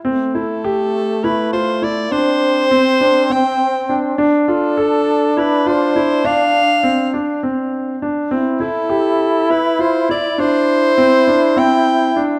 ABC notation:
X:1
M:7/8
L:1/8
Q:1/4=102
K:Gmix
V:1 name="Soprano saxophone"
z A3 B c d | c4 g2 z | z A3 B c2 | f3 z4 |
z A3 B c d | c4 g2 z |]
V:2 name="Grand piano"
C E G2 E F E | D2 C D C2 D | D F A2 E F E | D2 C D C2 D |
C E G2 E F E | D2 C D C2 D |]
V:3 name="Trombone"
A,6- A, | C6- C | D6- D- | D6 z |
E6- E | E6- E |]